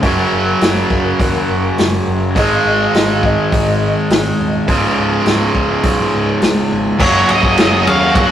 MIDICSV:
0, 0, Header, 1, 7, 480
1, 0, Start_track
1, 0, Tempo, 580271
1, 25, Time_signature, 4, 2, 24, 8
1, 6877, End_track
2, 0, Start_track
2, 0, Title_t, "Lead electric guitar"
2, 0, Program_c, 0, 29
2, 5801, Note_on_c, 0, 73, 87
2, 6039, Note_off_c, 0, 73, 0
2, 6042, Note_on_c, 0, 75, 88
2, 6512, Note_on_c, 0, 77, 84
2, 6528, Note_off_c, 0, 75, 0
2, 6743, Note_off_c, 0, 77, 0
2, 6747, Note_on_c, 0, 78, 90
2, 6877, Note_off_c, 0, 78, 0
2, 6877, End_track
3, 0, Start_track
3, 0, Title_t, "Electric slide guitar"
3, 0, Program_c, 1, 29
3, 1958, Note_on_c, 1, 75, 89
3, 2070, Note_off_c, 1, 75, 0
3, 2084, Note_on_c, 1, 77, 74
3, 2193, Note_off_c, 1, 77, 0
3, 2207, Note_on_c, 1, 75, 87
3, 2314, Note_off_c, 1, 75, 0
3, 2321, Note_on_c, 1, 77, 79
3, 2431, Note_off_c, 1, 77, 0
3, 2447, Note_on_c, 1, 75, 85
3, 2554, Note_off_c, 1, 75, 0
3, 2562, Note_on_c, 1, 77, 72
3, 2672, Note_off_c, 1, 77, 0
3, 2683, Note_on_c, 1, 75, 90
3, 4083, Note_off_c, 1, 75, 0
3, 6877, End_track
4, 0, Start_track
4, 0, Title_t, "Tonewheel organ"
4, 0, Program_c, 2, 16
4, 24, Note_on_c, 2, 78, 62
4, 25, Note_on_c, 2, 61, 66
4, 30, Note_on_c, 2, 70, 66
4, 1928, Note_off_c, 2, 78, 0
4, 1929, Note_off_c, 2, 61, 0
4, 1931, Note_off_c, 2, 70, 0
4, 1954, Note_on_c, 2, 75, 67
4, 1957, Note_on_c, 2, 60, 66
4, 1957, Note_on_c, 2, 68, 66
4, 3853, Note_off_c, 2, 75, 0
4, 3855, Note_off_c, 2, 60, 0
4, 3855, Note_off_c, 2, 68, 0
4, 3872, Note_on_c, 2, 73, 67
4, 3875, Note_on_c, 2, 59, 67
4, 3875, Note_on_c, 2, 65, 70
4, 5770, Note_off_c, 2, 73, 0
4, 5772, Note_off_c, 2, 59, 0
4, 5772, Note_off_c, 2, 65, 0
4, 5794, Note_on_c, 2, 58, 70
4, 5798, Note_on_c, 2, 73, 71
4, 6877, Note_off_c, 2, 58, 0
4, 6877, Note_off_c, 2, 73, 0
4, 6877, End_track
5, 0, Start_track
5, 0, Title_t, "Overdriven electric guitar"
5, 0, Program_c, 3, 29
5, 18, Note_on_c, 3, 42, 89
5, 36, Note_on_c, 3, 49, 83
5, 49, Note_on_c, 3, 54, 96
5, 1930, Note_off_c, 3, 42, 0
5, 1939, Note_off_c, 3, 49, 0
5, 1944, Note_on_c, 3, 44, 86
5, 1946, Note_off_c, 3, 54, 0
5, 1961, Note_on_c, 3, 51, 85
5, 1972, Note_on_c, 3, 56, 102
5, 3853, Note_off_c, 3, 44, 0
5, 3861, Note_off_c, 3, 51, 0
5, 3867, Note_off_c, 3, 56, 0
5, 3868, Note_on_c, 3, 37, 84
5, 3884, Note_on_c, 3, 44, 90
5, 3895, Note_on_c, 3, 49, 86
5, 5773, Note_off_c, 3, 37, 0
5, 5777, Note_off_c, 3, 49, 0
5, 5779, Note_on_c, 3, 42, 92
5, 5781, Note_off_c, 3, 44, 0
5, 5787, Note_on_c, 3, 49, 96
5, 5793, Note_on_c, 3, 54, 107
5, 5798, Note_on_c, 3, 58, 101
5, 5801, Note_on_c, 3, 61, 101
5, 5807, Note_on_c, 3, 66, 96
5, 6006, Note_off_c, 3, 54, 0
5, 6015, Note_on_c, 3, 54, 77
5, 6017, Note_off_c, 3, 58, 0
5, 6027, Note_on_c, 3, 58, 76
5, 6032, Note_off_c, 3, 61, 0
5, 6034, Note_off_c, 3, 66, 0
5, 6036, Note_on_c, 3, 61, 76
5, 6044, Note_on_c, 3, 66, 81
5, 6127, Note_off_c, 3, 66, 0
5, 6137, Note_on_c, 3, 66, 69
5, 6145, Note_off_c, 3, 61, 0
5, 6148, Note_off_c, 3, 58, 0
5, 6148, Note_on_c, 3, 61, 71
5, 6157, Note_off_c, 3, 54, 0
5, 6158, Note_on_c, 3, 58, 64
5, 6166, Note_on_c, 3, 54, 57
5, 6251, Note_off_c, 3, 42, 0
5, 6258, Note_off_c, 3, 49, 0
5, 6261, Note_on_c, 3, 42, 97
5, 6264, Note_off_c, 3, 54, 0
5, 6267, Note_off_c, 3, 58, 0
5, 6268, Note_on_c, 3, 49, 98
5, 6274, Note_on_c, 3, 54, 100
5, 6277, Note_on_c, 3, 58, 99
5, 6278, Note_off_c, 3, 61, 0
5, 6280, Note_off_c, 3, 66, 0
5, 6281, Note_on_c, 3, 61, 111
5, 6290, Note_on_c, 3, 66, 106
5, 6492, Note_off_c, 3, 54, 0
5, 6502, Note_on_c, 3, 54, 74
5, 6507, Note_off_c, 3, 58, 0
5, 6516, Note_on_c, 3, 58, 88
5, 6520, Note_off_c, 3, 66, 0
5, 6522, Note_off_c, 3, 61, 0
5, 6525, Note_on_c, 3, 61, 87
5, 6530, Note_on_c, 3, 66, 81
5, 6610, Note_off_c, 3, 66, 0
5, 6620, Note_on_c, 3, 66, 74
5, 6627, Note_off_c, 3, 61, 0
5, 6629, Note_off_c, 3, 58, 0
5, 6631, Note_on_c, 3, 61, 68
5, 6637, Note_off_c, 3, 54, 0
5, 6639, Note_on_c, 3, 58, 64
5, 6646, Note_on_c, 3, 54, 57
5, 6743, Note_off_c, 3, 42, 0
5, 6746, Note_off_c, 3, 49, 0
5, 6841, Note_off_c, 3, 66, 0
5, 6851, Note_on_c, 3, 66, 78
5, 6860, Note_off_c, 3, 61, 0
5, 6862, Note_off_c, 3, 58, 0
5, 6872, Note_off_c, 3, 54, 0
5, 6877, Note_off_c, 3, 66, 0
5, 6877, End_track
6, 0, Start_track
6, 0, Title_t, "Fingered electric bass"
6, 0, Program_c, 4, 33
6, 29, Note_on_c, 4, 30, 89
6, 194, Note_off_c, 4, 30, 0
6, 267, Note_on_c, 4, 30, 80
6, 433, Note_off_c, 4, 30, 0
6, 512, Note_on_c, 4, 30, 87
6, 676, Note_off_c, 4, 30, 0
6, 749, Note_on_c, 4, 30, 86
6, 915, Note_off_c, 4, 30, 0
6, 990, Note_on_c, 4, 39, 82
6, 1155, Note_off_c, 4, 39, 0
6, 1234, Note_on_c, 4, 30, 77
6, 1398, Note_off_c, 4, 30, 0
6, 1476, Note_on_c, 4, 30, 82
6, 1639, Note_off_c, 4, 30, 0
6, 1716, Note_on_c, 4, 30, 83
6, 1956, Note_off_c, 4, 30, 0
6, 1956, Note_on_c, 4, 32, 89
6, 2119, Note_off_c, 4, 32, 0
6, 2194, Note_on_c, 4, 32, 77
6, 2358, Note_off_c, 4, 32, 0
6, 2434, Note_on_c, 4, 32, 88
6, 2764, Note_off_c, 4, 32, 0
6, 2918, Note_on_c, 4, 32, 82
6, 3247, Note_off_c, 4, 32, 0
6, 3390, Note_on_c, 4, 32, 76
6, 3556, Note_off_c, 4, 32, 0
6, 3630, Note_on_c, 4, 27, 84
6, 3796, Note_off_c, 4, 27, 0
6, 3873, Note_on_c, 4, 25, 88
6, 4038, Note_off_c, 4, 25, 0
6, 4108, Note_on_c, 4, 25, 83
6, 4274, Note_off_c, 4, 25, 0
6, 4355, Note_on_c, 4, 25, 82
6, 4519, Note_off_c, 4, 25, 0
6, 4590, Note_on_c, 4, 25, 83
6, 4756, Note_off_c, 4, 25, 0
6, 4831, Note_on_c, 4, 35, 81
6, 4996, Note_off_c, 4, 35, 0
6, 5077, Note_on_c, 4, 25, 84
6, 5240, Note_off_c, 4, 25, 0
6, 5313, Note_on_c, 4, 25, 81
6, 5478, Note_off_c, 4, 25, 0
6, 5553, Note_on_c, 4, 32, 81
6, 5717, Note_off_c, 4, 32, 0
6, 5790, Note_on_c, 4, 30, 105
6, 6015, Note_off_c, 4, 30, 0
6, 6026, Note_on_c, 4, 25, 86
6, 6253, Note_off_c, 4, 25, 0
6, 6270, Note_on_c, 4, 30, 98
6, 6495, Note_off_c, 4, 30, 0
6, 6511, Note_on_c, 4, 39, 90
6, 6735, Note_off_c, 4, 39, 0
6, 6744, Note_on_c, 4, 27, 90
6, 6877, Note_off_c, 4, 27, 0
6, 6877, End_track
7, 0, Start_track
7, 0, Title_t, "Drums"
7, 22, Note_on_c, 9, 46, 48
7, 24, Note_on_c, 9, 36, 106
7, 104, Note_off_c, 9, 46, 0
7, 107, Note_off_c, 9, 36, 0
7, 506, Note_on_c, 9, 46, 53
7, 515, Note_on_c, 9, 38, 106
7, 589, Note_off_c, 9, 46, 0
7, 598, Note_off_c, 9, 38, 0
7, 747, Note_on_c, 9, 36, 79
7, 830, Note_off_c, 9, 36, 0
7, 989, Note_on_c, 9, 36, 110
7, 992, Note_on_c, 9, 46, 52
7, 1071, Note_off_c, 9, 36, 0
7, 1075, Note_off_c, 9, 46, 0
7, 1472, Note_on_c, 9, 46, 57
7, 1482, Note_on_c, 9, 38, 112
7, 1555, Note_off_c, 9, 46, 0
7, 1564, Note_off_c, 9, 38, 0
7, 1952, Note_on_c, 9, 36, 104
7, 1955, Note_on_c, 9, 46, 52
7, 2034, Note_off_c, 9, 36, 0
7, 2038, Note_off_c, 9, 46, 0
7, 2436, Note_on_c, 9, 46, 58
7, 2445, Note_on_c, 9, 38, 106
7, 2519, Note_off_c, 9, 46, 0
7, 2528, Note_off_c, 9, 38, 0
7, 2673, Note_on_c, 9, 36, 85
7, 2756, Note_off_c, 9, 36, 0
7, 2915, Note_on_c, 9, 36, 103
7, 2920, Note_on_c, 9, 46, 55
7, 2997, Note_off_c, 9, 36, 0
7, 3003, Note_off_c, 9, 46, 0
7, 3394, Note_on_c, 9, 46, 58
7, 3403, Note_on_c, 9, 38, 112
7, 3476, Note_off_c, 9, 46, 0
7, 3485, Note_off_c, 9, 38, 0
7, 3873, Note_on_c, 9, 36, 98
7, 3873, Note_on_c, 9, 46, 50
7, 3955, Note_off_c, 9, 36, 0
7, 3956, Note_off_c, 9, 46, 0
7, 4348, Note_on_c, 9, 46, 51
7, 4357, Note_on_c, 9, 38, 97
7, 4431, Note_off_c, 9, 46, 0
7, 4440, Note_off_c, 9, 38, 0
7, 4588, Note_on_c, 9, 36, 80
7, 4671, Note_off_c, 9, 36, 0
7, 4825, Note_on_c, 9, 46, 53
7, 4829, Note_on_c, 9, 36, 107
7, 4908, Note_off_c, 9, 46, 0
7, 4911, Note_off_c, 9, 36, 0
7, 5307, Note_on_c, 9, 46, 53
7, 5316, Note_on_c, 9, 38, 119
7, 5389, Note_off_c, 9, 46, 0
7, 5398, Note_off_c, 9, 38, 0
7, 5787, Note_on_c, 9, 36, 106
7, 5791, Note_on_c, 9, 49, 109
7, 5870, Note_off_c, 9, 36, 0
7, 5874, Note_off_c, 9, 49, 0
7, 6027, Note_on_c, 9, 51, 83
7, 6110, Note_off_c, 9, 51, 0
7, 6146, Note_on_c, 9, 36, 93
7, 6229, Note_off_c, 9, 36, 0
7, 6265, Note_on_c, 9, 51, 115
7, 6275, Note_on_c, 9, 38, 110
7, 6348, Note_off_c, 9, 51, 0
7, 6357, Note_off_c, 9, 38, 0
7, 6511, Note_on_c, 9, 51, 89
7, 6594, Note_off_c, 9, 51, 0
7, 6744, Note_on_c, 9, 36, 120
7, 6745, Note_on_c, 9, 51, 112
7, 6827, Note_off_c, 9, 36, 0
7, 6828, Note_off_c, 9, 51, 0
7, 6877, End_track
0, 0, End_of_file